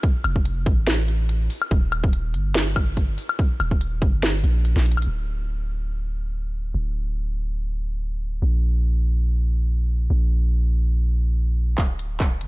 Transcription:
0.03 kick loud
0.03 closed hi-hat medium
0.24 0.68 F1 medium
0.24 closed hi-hat medium
0.24 high woodblock medium
0.36 kick medium
0.45 closed hi-hat medium
0.66 1.49 A1 medium
0.66 kick loud
0.66 closed hi-hat medium
0.87 snare loud
0.87 closed hi-hat medium
1.08 closed hi-hat medium
1.29 closed hi-hat medium
1.50 open hi-hat loud
1.62 high woodblock medium
1.71 2.36 D#1 loud
1.71 kick loud
1.71 closed hi-hat medium
1.92 closed hi-hat medium
1.92 high woodblock medium
2.04 kick loud
2.13 closed hi-hat medium
2.34 3.17 G1 medium
2.34 closed hi-hat medium
2.55 snare loud
2.55 closed hi-hat medium
2.76 kick loud
2.76 closed hi-hat medium
2.76 high woodblock medium
2.97 kick medium
2.97 closed hi-hat medium
3.18 open hi-hat loud
3.29 high woodblock medium
3.39 kick loud
3.39 closed hi-hat medium
3.60 4.03 D#1 medium
3.60 closed hi-hat medium
3.60 high woodblock medium
3.71 kick medium
3.81 closed hi-hat medium
4.02 4.43 G1 medium
4.02 kick loud
4.02 closed hi-hat medium
4.23 snare loud
4.23 closed hi-hat medium
4.44 4.75 A#1 medium
4.44 closed hi-hat medium
4.65 closed hi-hat medium
4.76 5.06 A#1 loud
4.76 snare soft
4.86 closed hi-hat medium
4.92 closed hi-hat medium
4.97 closed hi-hat medium
4.97 high woodblock medium
5.02 closed hi-hat medium
5.07 6.73 D1 medium
6.74 8.40 D1 medium
8.42 10.08 A#1 medium
10.10 11.76 A#1 medium
11.78 kick medium
11.78 clap soft
11.78 closed hi-hat medium
11.99 closed hi-hat medium
12.20 kick loud
12.20 clap soft
12.20 closed hi-hat medium
12.41 12.48 G1 medium
12.41 closed hi-hat medium

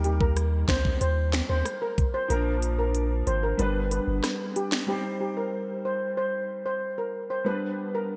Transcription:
0.00 0.65 D#2 loud
0.00 2.25 G3 medium
0.00 2.26 A#3 medium
0.00 2.26 D#4 medium
0.00 2.27 A#4 medium
0.04 0.16 G4 medium
0.04 closed hi-hat medium
0.21 0.32 A#4 medium
0.21 kick loud
0.37 cross-stick medium
0.37 closed hi-hat medium
0.69 0.96 D2 loud
0.69 0.80 C5 medium
0.69 finger snap loud
0.69 kick loud
0.69 snare loud
0.69 closed hi-hat soft
0.85 kick loud
1.01 1.42 D#2 loud
1.01 1.12 C5 medium
1.01 closed hi-hat medium
1.33 finger snap loud
1.33 snare loud
1.33 closed hi-hat medium
1.49 1.63 D#2 medium
1.49 1.61 C5 medium
1.65 cross-stick loud
1.65 closed hi-hat medium
1.82 1.93 A#4 medium
1.98 kick loud
1.98 closed hi-hat medium
2.14 2.25 C5 medium
2.28 3.23 A#1 loud
2.28 3.56 F3 medium
2.28 3.56 A#3 medium
2.28 3.57 D4 medium
2.28 2.42 A#4 loud
2.28 3.58 A#4 medium
2.28 closed hi-hat medium
2.62 closed hi-hat medium
2.79 2.90 A#4 medium
2.95 closed hi-hat medium
3.27 3.54 G#1 loud
3.27 3.38 C5 medium
3.27 closed hi-hat soft
3.43 3.54 A#4 medium
3.57 4.00 G1 loud
3.57 4.85 G3 medium
3.57 4.85 B3 medium
3.57 4.86 D4 medium
3.57 3.71 B4 medium
3.57 4.87 B4 medium
3.57 closed hi-hat medium
3.91 4.03 B4 medium
3.91 closed hi-hat medium
4.08 4.21 G1 medium
4.24 cross-stick loud
4.24 snare medium
4.24 closed hi-hat medium
4.56 4.67 G4 medium
4.56 closed hi-hat medium
4.72 finger snap medium
4.72 snare loud
4.86 7.41 G3 medium
4.86 7.42 C4 medium
4.86 7.43 D#4 medium
4.86 5.00 G4 medium
4.86 7.43 C5 medium
5.21 5.32 G4 medium
5.37 5.48 A#4 medium
5.85 5.96 C5 medium
6.17 6.29 C5 medium
6.66 6.77 C5 medium
6.98 7.09 A#4 medium
7.30 7.42 C5 medium
7.44 8.16 G3 medium
7.44 8.16 B3 medium
7.44 8.16 D4 medium
7.44 7.58 B4 loud
7.44 8.16 B4 medium
7.95 8.06 A#4 medium

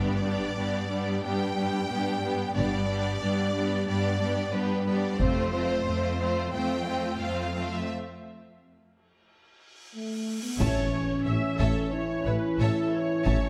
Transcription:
0.00 0.46 G1 medium
0.00 0.48 G2 medium
0.00 0.22 G3 medium
0.00 0.23 B3 medium
0.00 0.22 D4 soft
0.00 0.22 G4 soft
0.00 1.23 D5 medium
0.23 0.55 G3 soft
0.23 0.55 B3 soft
0.23 0.56 D4 soft
0.23 0.56 G4 soft
0.56 1.15 G2 medium
0.56 0.89 G3 soft
0.56 0.88 B3 soft
0.56 0.90 D4 soft
0.56 0.89 G4 soft
0.90 1.22 G3 soft
0.90 1.22 B3 soft
0.90 1.23 D4 soft
0.90 1.22 G4 soft
1.23 1.82 G2 medium
1.23 1.56 G3 medium
1.23 1.56 B3 soft
1.23 1.56 D4 medium
1.23 1.56 G4 medium
1.23 2.53 G5 medium
1.57 1.88 G3 soft
1.57 1.88 B3 soft
1.57 1.88 D4 soft
1.57 1.89 G4 soft
1.89 2.47 G2 medium
1.89 2.22 G3 medium
1.89 2.21 B3 soft
1.89 2.21 D4 medium
1.89 2.21 G4 medium
2.22 2.55 G3 medium
2.22 2.54 B3 soft
2.22 2.53 D4 soft
2.22 2.54 G4 soft
2.55 3.11 G1 medium
2.55 3.13 G2 medium
2.55 2.88 G3 medium
2.55 2.88 B3 medium
2.55 2.87 D4 soft
2.55 2.86 G4 medium
2.55 3.85 D5 medium
2.88 3.20 G3 soft
2.88 3.20 B3 soft
2.88 3.20 D4 soft
2.88 3.20 G4 medium
3.21 3.80 G2 medium
3.21 3.54 G3 soft
3.21 3.54 B3 soft
3.21 3.53 D4 soft
3.21 3.53 G4 soft
3.54 3.87 G3 soft
3.54 3.87 B3 soft
3.54 3.87 D4 soft
3.54 3.87 G4 soft
3.87 4.46 G2 medium
3.87 4.20 G3 medium
3.87 4.20 B3 medium
3.87 4.20 D4 medium
3.87 4.20 G4 soft
3.87 4.52 D5 medium
4.21 4.53 G3 medium
4.21 4.53 B3 soft
4.21 4.52 D4 soft
4.21 4.52 G4 soft
4.52 5.12 G2 medium
4.52 4.86 G3 soft
4.52 4.85 B3 soft
4.52 4.86 D4 soft
4.52 4.86 G4 soft
4.52 4.85 B4 medium
4.86 5.19 G3 medium
4.86 5.19 B3 soft
4.86 5.20 D4 soft
4.86 5.20 G4 soft
4.86 4.97 B4 medium
4.96 5.19 D5 medium
5.19 5.76 F1 medium
5.19 5.78 F2 medium
5.19 5.53 A3 medium
5.19 5.53 C4 medium
5.19 5.52 F4 soft
5.19 6.53 C5 medium
5.19 5.51 C5 soft
5.19 taiko medium
5.52 5.86 A3 soft
5.52 5.86 C4 soft
5.52 5.85 F4 soft
5.52 5.85 C5 soft
5.86 6.46 F2 medium
5.86 6.18 A3 soft
5.86 6.18 C4 soft
5.86 6.19 F4 soft
5.86 6.18 C5 soft
6.19 6.52 A3 soft
6.19 6.52 C4 soft
6.19 6.52 F4 soft
6.19 6.53 C5 soft
6.53 7.13 F2 medium
6.53 6.87 A3 soft
6.53 6.87 C4 soft
6.53 6.87 F4 soft
6.53 6.86 C5 soft
6.53 7.20 G5 medium
6.87 7.20 A3 soft
6.87 7.21 C4 soft
6.87 7.20 F4 soft
6.87 7.20 C5 soft
7.21 7.81 F2 soft
7.21 7.53 A3 soft
7.21 7.53 C4 soft
7.21 7.54 F4 soft
7.21 7.54 C5 soft
7.21 7.72 F5 medium
7.54 7.88 A3 soft
7.54 7.88 C4 soft
7.54 7.88 F4 soft
7.54 7.88 C5 soft
7.73 7.89 E5 medium
7.89 cymbal swell soft
9.94 10.40 A3 medium
10.42 10.59 B3 soft
10.59 10.68 A1 soft
10.59 10.74 A1 medium
10.59 10.67 A2 medium
10.59 11.56 A2 medium
10.59 13.49 E3 soft
10.59 11.93 C#4 medium
10.59 13.49 C#4 soft
10.59 11.22 C#5 medium
10.59 10.91 C#5 soft
10.59 10.90 E5 soft
10.59 10.91 A5 medium
10.59 taiko medium
10.59 impact medium
11.26 11.34 A1 soft
11.26 11.40 A1 soft
11.26 11.34 A2 soft
11.26 11.35 C#5 soft
11.26 11.34 E5 soft
11.26 11.60 E5 medium
11.59 11.67 A1 medium
11.59 11.73 A1 soft
11.59 11.67 A2 medium
11.59 11.93 A4 soft
11.59 11.91 C#5 soft
11.59 11.91 E5 medium
11.59 11.90 A5 medium
11.59 taiko medium
11.92 13.26 E4 medium
11.92 12.25 C#5 soft
12.25 12.33 A1 soft
12.25 12.39 A1 soft
12.25 12.34 A2 soft
12.25 12.59 B4 soft
12.25 12.34 C#5 soft
12.25 12.34 E5 soft
12.58 12.66 A1 medium
12.58 12.73 A1 soft
12.58 12.68 A2 medium
12.58 12.92 A4 soft
12.58 12.91 C#5 medium
12.58 12.91 E5 soft
12.58 12.91 A5 medium
12.93 13.49 C#5 medium
13.25 13.38 A1 medium
13.25 13.34 A1 medium
13.25 13.34 A2 medium
13.25 13.49 C#4 medium
13.25 13.49 C#5 soft
13.25 13.49 E5 soft
13.25 13.49 A5 medium
13.25 taiko medium

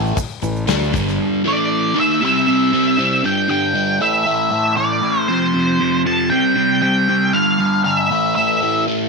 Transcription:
0.00 0.15 A1 medium
0.00 0.15 A2 medium
0.00 0.16 E3 loud
0.00 0.16 A3 loud
0.06 shaker soft
0.16 muted overdriven electric guitar stroke medium
0.16 muted fingered electric bass stroke soft
0.16 kick medium
0.16 open hi-hat medium
0.16 shaker medium
0.30 shaker soft
0.42 0.67 A1 medium
0.42 0.63 A2 medium
0.42 0.63 E3 medium
0.42 open hi-hat medium
0.42 shaker medium
0.56 shaker soft
0.67 0.92 D2 medium
0.67 0.92 D3 medium
0.67 0.93 A3 medium
0.67 0.93 D4 loud
0.67 snare loud
0.67 open hi-hat medium
0.67 shaker loud
0.84 shaker soft
0.93 1.18 G1 loud
0.93 1.44 G2 medium
0.93 1.44 D3 medium
0.93 1.44 G3 loud
0.93 kick loud
0.93 open hi-hat medium
0.93 shaker medium
1.07 snare soft
1.07 shaker soft
1.44 1.94 A2 medium
1.44 1.95 E3 loud
1.44 1.95 A3 medium
1.44 1.99 D5 medium
1.94 2.20 D#3 medium
1.94 2.21 A#3 medium
1.94 2.21 D#4 medium
2.00 2.22 E5 medium
2.21 2.46 C3 medium
2.21 2.46 G3 loud
2.21 2.47 C4 loud
2.25 3.22 E5 medium
2.47 2.71 C3 medium
2.47 2.72 G3 medium
2.47 2.72 C4 medium
2.72 2.97 C3 medium
2.72 2.97 G3 medium
2.72 2.98 C4 loud
2.98 3.22 C3 medium
2.98 3.23 G3 medium
2.98 3.23 C4 medium
3.23 3.47 G2 medium
3.23 3.47 D3 medium
3.23 3.48 G3 loud
3.23 3.49 G5 medium
3.48 3.73 G2 medium
3.48 3.74 D3 medium
3.48 3.74 G3 medium
3.48 3.98 G5 loud
3.75 3.99 G2 medium
3.75 3.99 D3 medium
3.75 3.99 G3 medium
4.01 4.25 A2 medium
4.01 4.25 E3 loud
4.01 4.25 A3 loud
4.01 4.76 E5 loud
4.26 4.49 A2 loud
4.26 4.50 E3 loud
4.26 4.50 A3 loud
4.51 4.75 A2 medium
4.51 4.76 E3 medium
4.51 4.76 A3 medium
4.76 5.00 A2 medium
4.76 5.01 E3 medium
4.76 5.01 A3 medium
4.76 5.20 D5 loud
5.01 5.26 A2 medium
5.01 5.27 E3 loud
5.01 5.27 A3 medium
5.20 5.28 C5 loud
5.28 5.53 F2 loud
5.28 5.53 C3 loud
5.28 5.53 F3 loud
5.28 6.01 C5 medium
5.54 5.79 F2 medium
5.54 5.79 C3 medium
5.54 5.80 F3 medium
5.80 6.04 F2 medium
5.80 6.05 C3 medium
5.80 6.04 F3 loud
6.05 6.30 F2 medium
6.05 6.30 C3 medium
6.05 6.30 F3 loud
6.05 6.30 A5 loud
6.30 6.55 C3 loud
6.30 6.54 G3 medium
6.30 6.55 C4 loud
6.30 6.81 G5 medium
6.56 6.81 C3 medium
6.56 6.81 G3 medium
6.56 6.82 C4 medium
6.82 7.07 C3 medium
6.82 7.08 G3 medium
6.82 7.08 C4 medium
6.82 7.35 G5 medium
7.08 7.32 C3 medium
7.08 7.32 G3 loud
7.08 7.33 C4 medium
7.33 7.58 G2 loud
7.33 7.58 D3 loud
7.33 7.59 G3 loud
7.33 7.81 F5 medium
7.59 7.83 G2 medium
7.59 7.84 D3 medium
7.59 7.84 G3 medium
7.84 8.09 G2 medium
7.84 8.09 D3 medium
7.84 8.09 G3 medium
7.84 7.95 F5 medium
7.95 8.34 E5 medium
8.11 8.35 A2 medium
8.11 8.36 E3 loud
8.11 8.36 A3 loud
8.35 8.61 A2 medium
8.35 8.61 E3 medium
8.35 8.62 A3 loud
8.35 8.83 E5 medium
8.62 8.86 A2 medium
8.62 8.86 E3 loud
8.62 8.87 A3 medium
8.88 9.09 A2 medium
8.88 9.09 E3 medium
8.88 9.09 A3 medium

